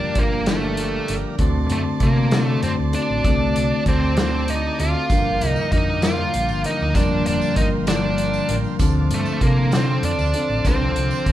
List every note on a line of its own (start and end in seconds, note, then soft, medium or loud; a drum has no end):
0.00 0.47 G2 medium
0.00 0.15 D3 medium
0.00 0.16 F3 medium
0.00 0.17 A#3 medium
0.00 0.18 D4 medium
0.00 0.20 D4 loud
0.00 1.36 G4 medium
0.00 5.06 D5 medium
0.00 1.35 F5 medium
0.00 1.36 A#5 medium
0.15 0.97 G1 medium
0.15 0.48 D3 medium
0.15 0.47 F3 medium
0.15 0.47 A#3 medium
0.15 0.46 A#3 medium
0.15 0.47 D4 medium
0.15 kick medium
0.15 closed hi-hat medium
0.46 1.37 D3 medium
0.46 1.10 F3 medium
0.46 1.13 A3 medium
0.46 1.09 A#3 medium
0.46 1.08 D4 medium
0.46 snare loud
0.46 closed hi-hat medium
0.50 1.39 G2 medium
0.77 closed hi-hat medium
1.08 1.23 G1 medium
1.08 1.39 F3 medium
1.08 1.39 A#3 medium
1.08 1.40 D4 medium
1.08 closed hi-hat medium
1.38 1.66 D2 loud
1.38 2.34 D3 medium
1.38 2.01 A3 medium
1.38 2.02 C4 medium
1.38 2.02 F#4 medium
1.38 5.07 A4 medium
1.38 2.03 A4 loud
1.38 5.07 A5 medium
1.38 3.24 C6 medium
1.38 kick medium
1.38 closed hi-hat medium
1.70 1.84 F#2 loud
1.70 1.80 A3 medium
1.70 closed hi-hat medium
2.00 2.55 C3 medium
2.00 2.33 A3 medium
2.00 2.44 A#3 medium
2.00 2.32 C4 medium
2.00 2.31 F#4 medium
2.00 2.30 A4 medium
2.00 kick medium
2.00 closed hi-hat medium
2.31 3.23 D3 medium
2.31 3.24 A3 medium
2.31 2.95 C4 medium
2.31 2.94 F#4 medium
2.31 2.92 A4 medium
2.31 snare loud
2.31 closed hi-hat medium
2.44 2.60 A3 medium
2.63 2.76 F#2 loud
2.63 2.72 C4 medium
2.63 closed hi-hat medium
2.79 2.92 D2 medium
2.93 3.25 C4 medium
2.93 3.83 D4 medium
2.93 3.25 F#4 medium
2.93 3.26 A4 medium
2.93 closed hi-hat medium
3.10 3.23 A1 medium
3.24 3.52 C2 loud
3.24 4.17 D3 medium
3.24 3.85 A3 medium
3.24 3.86 C4 medium
3.24 3.88 F#4 medium
3.24 3.88 A4 loud
3.24 5.08 D6 medium
3.24 kick loud
3.24 closed hi-hat medium
3.56 3.70 C2 medium
3.56 closed hi-hat medium
3.86 4.68 D2 medium
3.86 4.18 A3 medium
3.86 4.17 C4 medium
3.86 4.16 C4 medium
3.86 4.17 F#4 medium
3.86 4.16 A4 medium
3.86 kick medium
3.86 closed hi-hat medium
4.17 5.09 D3 medium
4.17 5.09 A3 medium
4.17 4.81 C4 medium
4.17 4.50 C4 medium
4.17 4.80 F#4 medium
4.17 4.79 A4 medium
4.17 snare loud
4.17 closed hi-hat medium
4.48 4.80 D#4 loud
4.48 closed hi-hat medium
4.80 4.93 D2 medium
4.80 5.10 C4 medium
4.80 5.47 F4 loud
4.80 5.09 F#4 medium
4.80 5.08 A4 medium
4.80 closed hi-hat medium
5.10 5.37 G1 loud
5.10 6.05 G2 medium
5.10 6.03 D3 medium
5.10 5.71 F3 medium
5.10 5.72 A#3 medium
5.10 5.73 D4 medium
5.10 8.77 A#4 medium
5.10 5.74 A#4 loud
5.10 11.32 F5 medium
5.10 8.77 G5 medium
5.10 6.94 D6 medium
5.10 kick medium
5.10 closed hi-hat medium
5.10 tambourine medium
5.41 5.55 C2 medium
5.41 closed hi-hat medium
5.47 5.72 D#4 loud
5.56 tambourine medium
5.72 6.26 F2 medium
5.72 6.04 F3 medium
5.72 6.02 A#3 medium
5.72 6.03 D4 medium
5.72 6.03 D#4 medium
5.72 6.01 A#4 medium
5.72 kick medium
5.72 closed hi-hat medium
6.02 6.93 G2 medium
6.02 6.94 D3 medium
6.02 6.67 F3 medium
6.02 6.65 A#3 medium
6.02 6.65 D4 medium
6.02 6.61 F4 loud
6.02 6.63 A#4 medium
6.02 snare loud
6.02 closed hi-hat medium
6.02 tambourine medium
6.34 6.48 A#1 medium
6.34 closed hi-hat medium
6.49 6.63 G1 medium
6.49 tambourine medium
6.64 6.95 F3 medium
6.64 6.95 A#3 medium
6.64 6.97 D4 medium
6.64 6.94 D#4 loud
6.64 6.96 A#4 medium
6.64 closed hi-hat medium
6.80 6.94 D2 medium
6.80 tambourine soft
6.94 7.22 F1 loud
6.94 7.87 G2 medium
6.94 7.88 D3 medium
6.94 7.57 F3 medium
6.94 7.56 A#3 loud
6.94 7.26 D4 medium
6.94 7.58 D4 medium
6.94 7.58 A#4 medium
6.94 8.79 C6 medium
6.94 kick loud
6.94 closed hi-hat medium
6.94 tambourine medium
7.26 7.40 F1 medium
7.26 7.55 D4 medium
7.26 closed hi-hat medium
7.41 tambourine medium
7.56 8.38 G1 medium
7.56 7.88 F3 medium
7.56 7.87 A#3 medium
7.56 7.87 D4 medium
7.56 7.65 D#4 medium
7.56 7.86 A#4 medium
7.56 kick medium
7.56 closed hi-hat medium
7.87 8.79 G2 medium
7.87 8.78 D3 medium
7.87 8.50 F3 medium
7.87 8.49 A#3 medium
7.87 8.49 D4 medium
7.87 8.53 D4 medium
7.87 8.47 A#4 medium
7.87 snare loud
7.87 closed hi-hat medium
7.87 tambourine medium
8.18 closed hi-hat medium
8.33 tambourine medium
8.48 8.63 A1 medium
8.48 8.80 F3 medium
8.48 8.79 A#3 medium
8.48 8.81 D4 medium
8.48 8.78 A#4 medium
8.48 closed hi-hat medium
8.64 tambourine soft
8.79 9.07 D2 loud
8.79 9.75 D3 medium
8.79 9.41 F3 loud
8.79 9.42 C4 medium
8.79 9.43 D4 medium
8.79 9.44 A4 loud
8.79 11.32 C5 medium
8.79 11.32 A5 medium
8.79 11.32 D6 medium
8.79 kick loud
8.79 closed hi-hat medium
8.79 tambourine loud
9.10 9.24 G2 medium
9.10 closed hi-hat medium
9.14 9.42 A3 medium
9.26 tambourine medium
9.41 9.96 C3 medium
9.41 9.74 F3 medium
9.41 9.71 A#3 medium
9.41 9.72 C4 medium
9.41 9.73 D4 medium
9.41 9.71 A4 medium
9.41 kick medium
9.41 closed hi-hat medium
9.71 10.64 D3 medium
9.71 10.66 F3 medium
9.71 10.36 C4 medium
9.71 10.02 C4 medium
9.71 10.35 D4 medium
9.71 10.33 A4 medium
9.71 snare loud
9.71 closed hi-hat medium
9.71 tambourine medium
10.03 10.17 F2 medium
10.03 10.68 D4 loud
10.03 closed hi-hat medium
10.18 10.32 D2 medium
10.18 tambourine medium
10.34 10.66 C4 medium
10.34 10.67 D4 medium
10.34 10.67 A4 medium
10.34 closed hi-hat medium
10.49 10.63 A1 medium
10.49 tambourine soft
10.65 10.92 C2 loud
10.65 11.32 D3 medium
10.65 11.26 F3 medium
10.65 11.32 C4 medium
10.65 11.26 C4 medium
10.65 11.27 D4 medium
10.65 kick medium
10.65 closed hi-hat medium
10.65 tambourine medium
10.69 11.28 A4 medium
10.96 11.10 C2 medium
10.96 closed hi-hat medium
11.11 tambourine medium
11.26 11.32 D2 medium
11.26 11.32 F3 medium
11.26 11.32 C4 medium
11.26 11.32 D4 medium
11.26 kick medium
11.26 closed hi-hat medium